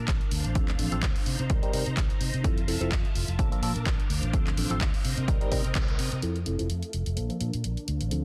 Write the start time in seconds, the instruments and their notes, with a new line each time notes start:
Already playing: string machine D4 A#4 A5
0.08 fingered electric bass A#1, kick, clap, closed hi-hat
0.21 closed hi-hat
0.31 fingered electric bass D2, string machine D4 C5 F5, open hi-hat
0.45 fingered electric bass A1, closed hi-hat
0.55 fingered electric bass D2, tine electric piano F3 C4 D4 A4, kick, closed hi-hat
0.68 clap, closed hi-hat
0.79 fingered electric bass A1, tine electric piano F3 C4 D4 A4, open hi-hat
0.91 fingered electric bass A1, tine electric piano F3 C4 D4 A4, closed hi-hat
1.03 fingered electric bass D2, kick, clap, closed hi-hat
1.16 open hi-hat
1.26 fingered electric bass C3, string machine D#4 A#5, open hi-hat
1.39 fingered electric bass C3, closed hi-hat
1.50 fingered electric bass C2, tine electric piano G3 C4 D#4 A#4, kick, closed hi-hat
1.62 tine electric piano G3 C4 D#4 A#4, closed hi-hat
1.73 fingered electric bass C3, tine electric piano G3 C4 D#4 A#4, open hi-hat
1.86 fingered electric bass C3, closed hi-hat
1.97 fingered electric bass C2, kick, clap, closed hi-hat
2.10 closed hi-hat
2.21 fingered electric bass C3, open hi-hat
2.34 fingered electric bass C3, closed hi-hat
2.44 fingered electric bass F2, tine electric piano F3 C4 E4 A4, string machine F4 E5 A5, kick, closed hi-hat
2.58 closed hi-hat
2.67 fingered electric bass F1, tine electric piano F3 C4 E4 A4, open hi-hat
2.80 fingered electric bass F1, tine electric piano F3 C4 E4 A4, closed hi-hat
2.92 fingered electric bass F2, kick, clap, closed hi-hat
3.05 closed hi-hat
3.15 fingered electric bass F1, open hi-hat
3.28 fingered electric bass F1, closed hi-hat
3.38 fingered electric bass A#1, tine electric piano F3 A#3 D4 A4, string machine D4 A#4 A5, kick, closed hi-hat
3.51 tine electric piano F3 A#3 D4 A4, closed hi-hat
3.62 fingered electric bass A#2, tine electric piano F3 A#3 D4 A4, open hi-hat
3.75 fingered electric bass A#2, closed hi-hat
3.86 fingered electric bass A#1, kick, clap, closed hi-hat
4.00 closed hi-hat
4.09 fingered electric bass D2, string machine C5 F5, open hi-hat
4.22 fingered electric bass A1, closed hi-hat
4.33 tine electric piano F3 C4 D4 A4, kick, closed hi-hat
4.47 clap, closed hi-hat
4.57 fingered electric bass A1, tine electric piano F3 C4 D4 A4, open hi-hat
4.70 fingered electric bass A1, tine electric piano F3 C4 D4 A4, closed hi-hat
4.81 fingered electric bass D2, kick, clap, closed hi-hat
4.94 open hi-hat
5.05 fingered electric bass C3, string machine C4 A#4 D#5, open hi-hat
5.18 fingered electric bass C3, closed hi-hat
5.28 fingered electric bass C2, tine electric piano G3 C4 D#4 A#4, kick, closed hi-hat
5.40 tine electric piano G3 C4 D#4 A#4, closed hi-hat
5.51 fingered electric bass C3, tine electric piano G3 C4 D#4 A#4, kick, open hi-hat
5.64 fingered electric bass C3, closed hi-hat
5.75 fingered electric bass C2, kick, clap, closed hi-hat
5.88 closed hi-hat
5.99 fingered electric bass C3, open hi-hat
6.12 fingered electric bass C3, closed hi-hat
6.22 fingered electric bass F2, tine electric piano F3 C4 E4 A4, string machine A4 E5 F5, closed hi-hat
6.36 closed hi-hat
6.45 fingered electric bass F1, tine electric piano F3 C4 E4 A4, closed hi-hat
6.58 fingered electric bass F1, tine electric piano F3 C4 E4 A4, closed hi-hat
6.70 fingered electric bass F2, closed hi-hat
6.83 closed hi-hat
6.93 fingered electric bass F1, closed hi-hat
7.06 fingered electric bass F1, closed hi-hat
7.16 fingered electric bass A#1, tine electric piano F3 A#3 D4 A4, string machine D4 A#4 A5, closed hi-hat
7.29 tine electric piano F3 A#3 D4 A4, closed hi-hat
7.40 fingered electric bass A#2, tine electric piano F3 A#3 D4 A4, closed hi-hat
7.53 fingered electric bass A#2, closed hi-hat
7.64 fingered electric bass A#1, closed hi-hat
7.77 closed hi-hat
7.88 fingered electric bass D2, string machine C5 F5, closed hi-hat
8.01 fingered electric bass A1, closed hi-hat
8.11 fingered electric bass D2, tine electric piano F3 C4 D4 A4, closed hi-hat